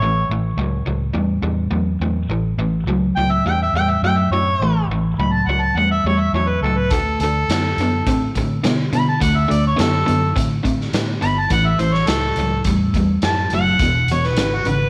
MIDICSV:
0, 0, Header, 1, 5, 480
1, 0, Start_track
1, 0, Time_signature, 4, 2, 24, 8
1, 0, Tempo, 577478
1, 6236, Tempo, 572519
1, 12433, End_track
2, 0, Start_track
2, 0, Title_t, "Harmonica"
2, 0, Program_c, 0, 22
2, 0, Note_on_c, 0, 73, 88
2, 235, Note_off_c, 0, 73, 0
2, 2625, Note_on_c, 0, 79, 106
2, 2754, Note_on_c, 0, 76, 94
2, 2766, Note_off_c, 0, 79, 0
2, 2869, Note_off_c, 0, 76, 0
2, 2877, Note_on_c, 0, 79, 81
2, 2991, Note_off_c, 0, 79, 0
2, 3009, Note_on_c, 0, 76, 90
2, 3115, Note_off_c, 0, 76, 0
2, 3120, Note_on_c, 0, 79, 102
2, 3235, Note_on_c, 0, 76, 88
2, 3247, Note_off_c, 0, 79, 0
2, 3350, Note_off_c, 0, 76, 0
2, 3355, Note_on_c, 0, 79, 101
2, 3461, Note_on_c, 0, 76, 83
2, 3473, Note_off_c, 0, 79, 0
2, 3582, Note_off_c, 0, 76, 0
2, 3587, Note_on_c, 0, 73, 93
2, 4060, Note_off_c, 0, 73, 0
2, 4314, Note_on_c, 0, 83, 96
2, 4421, Note_on_c, 0, 81, 84
2, 4434, Note_off_c, 0, 83, 0
2, 4547, Note_on_c, 0, 78, 84
2, 4559, Note_off_c, 0, 81, 0
2, 4662, Note_on_c, 0, 81, 87
2, 4675, Note_off_c, 0, 78, 0
2, 4793, Note_on_c, 0, 78, 86
2, 4805, Note_off_c, 0, 81, 0
2, 4907, Note_off_c, 0, 78, 0
2, 4913, Note_on_c, 0, 76, 87
2, 5027, Note_off_c, 0, 76, 0
2, 5042, Note_on_c, 0, 73, 79
2, 5149, Note_on_c, 0, 76, 84
2, 5162, Note_off_c, 0, 73, 0
2, 5265, Note_off_c, 0, 76, 0
2, 5270, Note_on_c, 0, 73, 82
2, 5383, Note_on_c, 0, 71, 75
2, 5396, Note_off_c, 0, 73, 0
2, 5500, Note_off_c, 0, 71, 0
2, 5505, Note_on_c, 0, 69, 78
2, 5625, Note_on_c, 0, 71, 86
2, 5637, Note_off_c, 0, 69, 0
2, 5748, Note_on_c, 0, 69, 92
2, 5760, Note_off_c, 0, 71, 0
2, 5984, Note_off_c, 0, 69, 0
2, 5988, Note_on_c, 0, 69, 97
2, 6923, Note_off_c, 0, 69, 0
2, 7450, Note_on_c, 0, 83, 107
2, 7556, Note_off_c, 0, 83, 0
2, 7561, Note_on_c, 0, 81, 88
2, 7662, Note_off_c, 0, 81, 0
2, 7667, Note_on_c, 0, 78, 100
2, 7792, Note_on_c, 0, 76, 89
2, 7805, Note_off_c, 0, 78, 0
2, 7925, Note_on_c, 0, 74, 85
2, 7938, Note_off_c, 0, 76, 0
2, 8033, Note_off_c, 0, 74, 0
2, 8052, Note_on_c, 0, 73, 85
2, 8157, Note_off_c, 0, 73, 0
2, 8162, Note_on_c, 0, 69, 99
2, 8626, Note_off_c, 0, 69, 0
2, 9355, Note_on_c, 0, 83, 110
2, 9491, Note_on_c, 0, 81, 95
2, 9504, Note_off_c, 0, 83, 0
2, 9596, Note_off_c, 0, 81, 0
2, 9602, Note_on_c, 0, 78, 106
2, 9719, Note_on_c, 0, 76, 90
2, 9732, Note_off_c, 0, 78, 0
2, 9838, Note_on_c, 0, 72, 91
2, 9850, Note_off_c, 0, 76, 0
2, 9954, Note_on_c, 0, 73, 85
2, 9967, Note_off_c, 0, 72, 0
2, 10064, Note_on_c, 0, 69, 100
2, 10077, Note_off_c, 0, 73, 0
2, 10535, Note_off_c, 0, 69, 0
2, 11046, Note_on_c, 0, 81, 99
2, 11273, Note_off_c, 0, 81, 0
2, 11301, Note_on_c, 0, 78, 103
2, 11753, Note_off_c, 0, 78, 0
2, 11778, Note_on_c, 0, 73, 78
2, 11909, Note_on_c, 0, 71, 83
2, 11921, Note_off_c, 0, 73, 0
2, 12135, Note_on_c, 0, 66, 91
2, 12147, Note_off_c, 0, 71, 0
2, 12247, Note_on_c, 0, 71, 99
2, 12259, Note_off_c, 0, 66, 0
2, 12433, Note_off_c, 0, 71, 0
2, 12433, End_track
3, 0, Start_track
3, 0, Title_t, "Overdriven electric guitar"
3, 0, Program_c, 1, 29
3, 17, Note_on_c, 1, 45, 81
3, 25, Note_on_c, 1, 52, 91
3, 224, Note_off_c, 1, 45, 0
3, 227, Note_off_c, 1, 52, 0
3, 261, Note_on_c, 1, 45, 63
3, 262, Note_on_c, 1, 52, 79
3, 465, Note_off_c, 1, 45, 0
3, 466, Note_off_c, 1, 52, 0
3, 481, Note_on_c, 1, 45, 77
3, 491, Note_on_c, 1, 54, 96
3, 696, Note_off_c, 1, 45, 0
3, 701, Note_off_c, 1, 54, 0
3, 717, Note_on_c, 1, 45, 67
3, 725, Note_on_c, 1, 54, 69
3, 934, Note_off_c, 1, 45, 0
3, 938, Note_off_c, 1, 54, 0
3, 946, Note_on_c, 1, 45, 77
3, 956, Note_on_c, 1, 55, 87
3, 1169, Note_off_c, 1, 45, 0
3, 1174, Note_off_c, 1, 55, 0
3, 1190, Note_on_c, 1, 45, 73
3, 1191, Note_on_c, 1, 55, 76
3, 1411, Note_off_c, 1, 45, 0
3, 1412, Note_off_c, 1, 55, 0
3, 1421, Note_on_c, 1, 45, 84
3, 1424, Note_on_c, 1, 54, 88
3, 1647, Note_off_c, 1, 45, 0
3, 1649, Note_off_c, 1, 54, 0
3, 1675, Note_on_c, 1, 54, 82
3, 1676, Note_on_c, 1, 45, 77
3, 1894, Note_off_c, 1, 54, 0
3, 1895, Note_off_c, 1, 45, 0
3, 1910, Note_on_c, 1, 45, 70
3, 1922, Note_on_c, 1, 52, 87
3, 2132, Note_off_c, 1, 45, 0
3, 2138, Note_off_c, 1, 52, 0
3, 2156, Note_on_c, 1, 45, 67
3, 2159, Note_on_c, 1, 52, 72
3, 2375, Note_off_c, 1, 45, 0
3, 2377, Note_off_c, 1, 52, 0
3, 2388, Note_on_c, 1, 45, 83
3, 2396, Note_on_c, 1, 54, 91
3, 2611, Note_off_c, 1, 45, 0
3, 2615, Note_off_c, 1, 54, 0
3, 2638, Note_on_c, 1, 45, 70
3, 2640, Note_on_c, 1, 54, 74
3, 2856, Note_off_c, 1, 45, 0
3, 2857, Note_off_c, 1, 54, 0
3, 2875, Note_on_c, 1, 45, 81
3, 2882, Note_on_c, 1, 55, 92
3, 3094, Note_off_c, 1, 45, 0
3, 3098, Note_off_c, 1, 55, 0
3, 3120, Note_on_c, 1, 45, 70
3, 3129, Note_on_c, 1, 55, 72
3, 3337, Note_off_c, 1, 45, 0
3, 3342, Note_off_c, 1, 55, 0
3, 3357, Note_on_c, 1, 54, 94
3, 3358, Note_on_c, 1, 45, 79
3, 3575, Note_off_c, 1, 54, 0
3, 3576, Note_off_c, 1, 45, 0
3, 3598, Note_on_c, 1, 54, 73
3, 3604, Note_on_c, 1, 45, 75
3, 3816, Note_off_c, 1, 54, 0
3, 3819, Note_off_c, 1, 45, 0
3, 3843, Note_on_c, 1, 52, 88
3, 3844, Note_on_c, 1, 45, 79
3, 4058, Note_off_c, 1, 52, 0
3, 4059, Note_off_c, 1, 45, 0
3, 4084, Note_on_c, 1, 45, 73
3, 4086, Note_on_c, 1, 52, 77
3, 4298, Note_off_c, 1, 45, 0
3, 4300, Note_off_c, 1, 52, 0
3, 4318, Note_on_c, 1, 45, 85
3, 4319, Note_on_c, 1, 54, 83
3, 4535, Note_off_c, 1, 45, 0
3, 4536, Note_off_c, 1, 54, 0
3, 4565, Note_on_c, 1, 45, 64
3, 4569, Note_on_c, 1, 54, 81
3, 4778, Note_off_c, 1, 45, 0
3, 4780, Note_off_c, 1, 54, 0
3, 4802, Note_on_c, 1, 45, 76
3, 4804, Note_on_c, 1, 55, 75
3, 5016, Note_off_c, 1, 45, 0
3, 5017, Note_off_c, 1, 55, 0
3, 5044, Note_on_c, 1, 45, 65
3, 5046, Note_on_c, 1, 55, 73
3, 5257, Note_off_c, 1, 45, 0
3, 5258, Note_off_c, 1, 55, 0
3, 5274, Note_on_c, 1, 45, 82
3, 5285, Note_on_c, 1, 54, 91
3, 5491, Note_off_c, 1, 45, 0
3, 5497, Note_off_c, 1, 54, 0
3, 5522, Note_on_c, 1, 45, 71
3, 5534, Note_on_c, 1, 54, 78
3, 5735, Note_off_c, 1, 45, 0
3, 5741, Note_off_c, 1, 54, 0
3, 5759, Note_on_c, 1, 50, 84
3, 5762, Note_on_c, 1, 57, 84
3, 5973, Note_off_c, 1, 50, 0
3, 5974, Note_off_c, 1, 57, 0
3, 6012, Note_on_c, 1, 50, 68
3, 6018, Note_on_c, 1, 57, 77
3, 6219, Note_off_c, 1, 50, 0
3, 6222, Note_off_c, 1, 57, 0
3, 6246, Note_on_c, 1, 50, 84
3, 6250, Note_on_c, 1, 59, 84
3, 6457, Note_off_c, 1, 50, 0
3, 6459, Note_off_c, 1, 59, 0
3, 6488, Note_on_c, 1, 50, 68
3, 6496, Note_on_c, 1, 59, 76
3, 6698, Note_off_c, 1, 50, 0
3, 6702, Note_off_c, 1, 59, 0
3, 6713, Note_on_c, 1, 50, 72
3, 6719, Note_on_c, 1, 60, 86
3, 6931, Note_off_c, 1, 50, 0
3, 6934, Note_off_c, 1, 60, 0
3, 6966, Note_on_c, 1, 50, 78
3, 6967, Note_on_c, 1, 60, 83
3, 7176, Note_off_c, 1, 50, 0
3, 7178, Note_off_c, 1, 60, 0
3, 7186, Note_on_c, 1, 50, 81
3, 7188, Note_on_c, 1, 59, 94
3, 7408, Note_off_c, 1, 50, 0
3, 7409, Note_off_c, 1, 59, 0
3, 7430, Note_on_c, 1, 50, 72
3, 7437, Note_on_c, 1, 59, 79
3, 7650, Note_off_c, 1, 50, 0
3, 7654, Note_off_c, 1, 59, 0
3, 7663, Note_on_c, 1, 50, 82
3, 7673, Note_on_c, 1, 57, 96
3, 7886, Note_off_c, 1, 50, 0
3, 7891, Note_off_c, 1, 57, 0
3, 7896, Note_on_c, 1, 50, 62
3, 7900, Note_on_c, 1, 57, 74
3, 8123, Note_off_c, 1, 50, 0
3, 8125, Note_off_c, 1, 57, 0
3, 8132, Note_on_c, 1, 50, 83
3, 8137, Note_on_c, 1, 59, 99
3, 8361, Note_off_c, 1, 50, 0
3, 8364, Note_off_c, 1, 59, 0
3, 8382, Note_on_c, 1, 50, 70
3, 8383, Note_on_c, 1, 59, 70
3, 8606, Note_off_c, 1, 50, 0
3, 8607, Note_off_c, 1, 59, 0
3, 8628, Note_on_c, 1, 50, 68
3, 8632, Note_on_c, 1, 60, 82
3, 8849, Note_off_c, 1, 50, 0
3, 8851, Note_off_c, 1, 60, 0
3, 8860, Note_on_c, 1, 50, 73
3, 8871, Note_on_c, 1, 60, 80
3, 9085, Note_off_c, 1, 50, 0
3, 9090, Note_off_c, 1, 60, 0
3, 9119, Note_on_c, 1, 50, 85
3, 9126, Note_on_c, 1, 59, 96
3, 9334, Note_off_c, 1, 50, 0
3, 9338, Note_off_c, 1, 59, 0
3, 9347, Note_on_c, 1, 50, 73
3, 9355, Note_on_c, 1, 59, 82
3, 9568, Note_off_c, 1, 50, 0
3, 9572, Note_off_c, 1, 59, 0
3, 9595, Note_on_c, 1, 45, 78
3, 9601, Note_on_c, 1, 52, 90
3, 9812, Note_off_c, 1, 45, 0
3, 9815, Note_off_c, 1, 52, 0
3, 9833, Note_on_c, 1, 45, 70
3, 9840, Note_on_c, 1, 52, 78
3, 10051, Note_off_c, 1, 45, 0
3, 10054, Note_off_c, 1, 52, 0
3, 10079, Note_on_c, 1, 54, 104
3, 10080, Note_on_c, 1, 45, 88
3, 10294, Note_off_c, 1, 45, 0
3, 10294, Note_off_c, 1, 54, 0
3, 10331, Note_on_c, 1, 45, 71
3, 10342, Note_on_c, 1, 54, 79
3, 10540, Note_off_c, 1, 45, 0
3, 10545, Note_off_c, 1, 54, 0
3, 10570, Note_on_c, 1, 55, 78
3, 10575, Note_on_c, 1, 45, 73
3, 10779, Note_off_c, 1, 55, 0
3, 10781, Note_off_c, 1, 45, 0
3, 10811, Note_on_c, 1, 45, 67
3, 10822, Note_on_c, 1, 55, 82
3, 11019, Note_off_c, 1, 45, 0
3, 11024, Note_off_c, 1, 55, 0
3, 11046, Note_on_c, 1, 45, 76
3, 11055, Note_on_c, 1, 54, 86
3, 11256, Note_off_c, 1, 45, 0
3, 11261, Note_off_c, 1, 54, 0
3, 11294, Note_on_c, 1, 45, 78
3, 11298, Note_on_c, 1, 54, 81
3, 11500, Note_off_c, 1, 45, 0
3, 11502, Note_off_c, 1, 54, 0
3, 11531, Note_on_c, 1, 40, 81
3, 11534, Note_on_c, 1, 47, 97
3, 11738, Note_off_c, 1, 40, 0
3, 11740, Note_off_c, 1, 47, 0
3, 11781, Note_on_c, 1, 40, 69
3, 11783, Note_on_c, 1, 47, 72
3, 11983, Note_off_c, 1, 40, 0
3, 11984, Note_off_c, 1, 47, 0
3, 12008, Note_on_c, 1, 40, 81
3, 12015, Note_on_c, 1, 49, 88
3, 12216, Note_off_c, 1, 40, 0
3, 12220, Note_off_c, 1, 49, 0
3, 12242, Note_on_c, 1, 40, 59
3, 12246, Note_on_c, 1, 49, 75
3, 12433, Note_off_c, 1, 40, 0
3, 12433, Note_off_c, 1, 49, 0
3, 12433, End_track
4, 0, Start_track
4, 0, Title_t, "Fingered electric bass"
4, 0, Program_c, 2, 33
4, 0, Note_on_c, 2, 33, 83
4, 191, Note_off_c, 2, 33, 0
4, 243, Note_on_c, 2, 33, 82
4, 438, Note_off_c, 2, 33, 0
4, 473, Note_on_c, 2, 37, 86
4, 672, Note_off_c, 2, 37, 0
4, 716, Note_on_c, 2, 37, 84
4, 914, Note_off_c, 2, 37, 0
4, 949, Note_on_c, 2, 40, 80
4, 1150, Note_off_c, 2, 40, 0
4, 1180, Note_on_c, 2, 40, 83
4, 1385, Note_off_c, 2, 40, 0
4, 1421, Note_on_c, 2, 40, 84
4, 1626, Note_off_c, 2, 40, 0
4, 1661, Note_on_c, 2, 40, 80
4, 1866, Note_off_c, 2, 40, 0
4, 1899, Note_on_c, 2, 33, 86
4, 2105, Note_off_c, 2, 33, 0
4, 2141, Note_on_c, 2, 33, 85
4, 2346, Note_off_c, 2, 33, 0
4, 2381, Note_on_c, 2, 37, 90
4, 2586, Note_off_c, 2, 37, 0
4, 2628, Note_on_c, 2, 37, 82
4, 2831, Note_off_c, 2, 37, 0
4, 2865, Note_on_c, 2, 40, 80
4, 3069, Note_off_c, 2, 40, 0
4, 3096, Note_on_c, 2, 40, 88
4, 3304, Note_off_c, 2, 40, 0
4, 3340, Note_on_c, 2, 42, 81
4, 3546, Note_off_c, 2, 42, 0
4, 3577, Note_on_c, 2, 42, 86
4, 3783, Note_off_c, 2, 42, 0
4, 3820, Note_on_c, 2, 33, 84
4, 4025, Note_off_c, 2, 33, 0
4, 4055, Note_on_c, 2, 33, 81
4, 4262, Note_off_c, 2, 33, 0
4, 4303, Note_on_c, 2, 37, 83
4, 4507, Note_off_c, 2, 37, 0
4, 4539, Note_on_c, 2, 37, 84
4, 4744, Note_off_c, 2, 37, 0
4, 4771, Note_on_c, 2, 40, 75
4, 4979, Note_off_c, 2, 40, 0
4, 5019, Note_on_c, 2, 40, 83
4, 5223, Note_off_c, 2, 40, 0
4, 5258, Note_on_c, 2, 40, 78
4, 5462, Note_off_c, 2, 40, 0
4, 5494, Note_on_c, 2, 37, 80
4, 5742, Note_off_c, 2, 37, 0
4, 5742, Note_on_c, 2, 38, 79
4, 5943, Note_off_c, 2, 38, 0
4, 5981, Note_on_c, 2, 38, 89
4, 6182, Note_off_c, 2, 38, 0
4, 6221, Note_on_c, 2, 42, 84
4, 6423, Note_off_c, 2, 42, 0
4, 6461, Note_on_c, 2, 42, 78
4, 6664, Note_off_c, 2, 42, 0
4, 6709, Note_on_c, 2, 45, 77
4, 6909, Note_off_c, 2, 45, 0
4, 6948, Note_on_c, 2, 45, 89
4, 7148, Note_off_c, 2, 45, 0
4, 7190, Note_on_c, 2, 47, 76
4, 7389, Note_off_c, 2, 47, 0
4, 7426, Note_on_c, 2, 47, 75
4, 7628, Note_off_c, 2, 47, 0
4, 7671, Note_on_c, 2, 38, 89
4, 7870, Note_off_c, 2, 38, 0
4, 7915, Note_on_c, 2, 38, 90
4, 8113, Note_off_c, 2, 38, 0
4, 8152, Note_on_c, 2, 42, 90
4, 8351, Note_off_c, 2, 42, 0
4, 8398, Note_on_c, 2, 42, 84
4, 8595, Note_off_c, 2, 42, 0
4, 8629, Note_on_c, 2, 45, 85
4, 8830, Note_off_c, 2, 45, 0
4, 8868, Note_on_c, 2, 45, 84
4, 9068, Note_off_c, 2, 45, 0
4, 9111, Note_on_c, 2, 45, 77
4, 9310, Note_off_c, 2, 45, 0
4, 9350, Note_on_c, 2, 31, 83
4, 9550, Note_off_c, 2, 31, 0
4, 9588, Note_on_c, 2, 33, 93
4, 9789, Note_off_c, 2, 33, 0
4, 9832, Note_on_c, 2, 33, 87
4, 10031, Note_off_c, 2, 33, 0
4, 10069, Note_on_c, 2, 37, 88
4, 10269, Note_off_c, 2, 37, 0
4, 10311, Note_on_c, 2, 37, 80
4, 10510, Note_off_c, 2, 37, 0
4, 10551, Note_on_c, 2, 40, 83
4, 10750, Note_off_c, 2, 40, 0
4, 10787, Note_on_c, 2, 40, 85
4, 10987, Note_off_c, 2, 40, 0
4, 11032, Note_on_c, 2, 42, 85
4, 11230, Note_off_c, 2, 42, 0
4, 11272, Note_on_c, 2, 30, 80
4, 11470, Note_off_c, 2, 30, 0
4, 11506, Note_on_c, 2, 28, 91
4, 11706, Note_off_c, 2, 28, 0
4, 11748, Note_on_c, 2, 28, 86
4, 11946, Note_off_c, 2, 28, 0
4, 11990, Note_on_c, 2, 32, 87
4, 12188, Note_off_c, 2, 32, 0
4, 12231, Note_on_c, 2, 32, 86
4, 12428, Note_off_c, 2, 32, 0
4, 12433, End_track
5, 0, Start_track
5, 0, Title_t, "Drums"
5, 5739, Note_on_c, 9, 42, 67
5, 5745, Note_on_c, 9, 36, 97
5, 5822, Note_off_c, 9, 42, 0
5, 5828, Note_off_c, 9, 36, 0
5, 5984, Note_on_c, 9, 42, 55
5, 6067, Note_off_c, 9, 42, 0
5, 6231, Note_on_c, 9, 42, 80
5, 6240, Note_on_c, 9, 38, 106
5, 6315, Note_off_c, 9, 42, 0
5, 6324, Note_off_c, 9, 38, 0
5, 6469, Note_on_c, 9, 42, 54
5, 6553, Note_off_c, 9, 42, 0
5, 6709, Note_on_c, 9, 36, 106
5, 6710, Note_on_c, 9, 42, 78
5, 6793, Note_off_c, 9, 36, 0
5, 6794, Note_off_c, 9, 42, 0
5, 6950, Note_on_c, 9, 36, 67
5, 6950, Note_on_c, 9, 42, 57
5, 7034, Note_off_c, 9, 36, 0
5, 7034, Note_off_c, 9, 42, 0
5, 7190, Note_on_c, 9, 42, 83
5, 7200, Note_on_c, 9, 38, 104
5, 7274, Note_off_c, 9, 42, 0
5, 7283, Note_off_c, 9, 38, 0
5, 7432, Note_on_c, 9, 42, 55
5, 7516, Note_off_c, 9, 42, 0
5, 7671, Note_on_c, 9, 36, 98
5, 7672, Note_on_c, 9, 42, 81
5, 7755, Note_off_c, 9, 36, 0
5, 7756, Note_off_c, 9, 42, 0
5, 7921, Note_on_c, 9, 42, 61
5, 8005, Note_off_c, 9, 42, 0
5, 8152, Note_on_c, 9, 42, 87
5, 8162, Note_on_c, 9, 38, 111
5, 8236, Note_off_c, 9, 42, 0
5, 8245, Note_off_c, 9, 38, 0
5, 8396, Note_on_c, 9, 42, 62
5, 8480, Note_off_c, 9, 42, 0
5, 8635, Note_on_c, 9, 36, 97
5, 8643, Note_on_c, 9, 42, 80
5, 8719, Note_off_c, 9, 36, 0
5, 8727, Note_off_c, 9, 42, 0
5, 8875, Note_on_c, 9, 36, 76
5, 8877, Note_on_c, 9, 42, 55
5, 8959, Note_off_c, 9, 36, 0
5, 8961, Note_off_c, 9, 42, 0
5, 9008, Note_on_c, 9, 38, 27
5, 9092, Note_off_c, 9, 38, 0
5, 9113, Note_on_c, 9, 42, 82
5, 9122, Note_on_c, 9, 38, 99
5, 9196, Note_off_c, 9, 42, 0
5, 9206, Note_off_c, 9, 38, 0
5, 9355, Note_on_c, 9, 42, 55
5, 9438, Note_off_c, 9, 42, 0
5, 9589, Note_on_c, 9, 42, 71
5, 9592, Note_on_c, 9, 36, 103
5, 9673, Note_off_c, 9, 42, 0
5, 9676, Note_off_c, 9, 36, 0
5, 9833, Note_on_c, 9, 42, 56
5, 9917, Note_off_c, 9, 42, 0
5, 9959, Note_on_c, 9, 38, 31
5, 10043, Note_off_c, 9, 38, 0
5, 10068, Note_on_c, 9, 42, 85
5, 10077, Note_on_c, 9, 38, 110
5, 10151, Note_off_c, 9, 42, 0
5, 10161, Note_off_c, 9, 38, 0
5, 10307, Note_on_c, 9, 42, 58
5, 10391, Note_off_c, 9, 42, 0
5, 10547, Note_on_c, 9, 42, 77
5, 10552, Note_on_c, 9, 36, 95
5, 10630, Note_off_c, 9, 42, 0
5, 10636, Note_off_c, 9, 36, 0
5, 10794, Note_on_c, 9, 36, 72
5, 10798, Note_on_c, 9, 42, 53
5, 10878, Note_off_c, 9, 36, 0
5, 10881, Note_off_c, 9, 42, 0
5, 11029, Note_on_c, 9, 42, 77
5, 11038, Note_on_c, 9, 38, 104
5, 11113, Note_off_c, 9, 42, 0
5, 11122, Note_off_c, 9, 38, 0
5, 11265, Note_on_c, 9, 42, 55
5, 11349, Note_off_c, 9, 42, 0
5, 11510, Note_on_c, 9, 42, 76
5, 11512, Note_on_c, 9, 36, 98
5, 11594, Note_off_c, 9, 42, 0
5, 11596, Note_off_c, 9, 36, 0
5, 11752, Note_on_c, 9, 42, 61
5, 11836, Note_off_c, 9, 42, 0
5, 11884, Note_on_c, 9, 38, 29
5, 11968, Note_off_c, 9, 38, 0
5, 11990, Note_on_c, 9, 42, 86
5, 11999, Note_on_c, 9, 38, 105
5, 12073, Note_off_c, 9, 42, 0
5, 12083, Note_off_c, 9, 38, 0
5, 12230, Note_on_c, 9, 42, 57
5, 12314, Note_off_c, 9, 42, 0
5, 12433, End_track
0, 0, End_of_file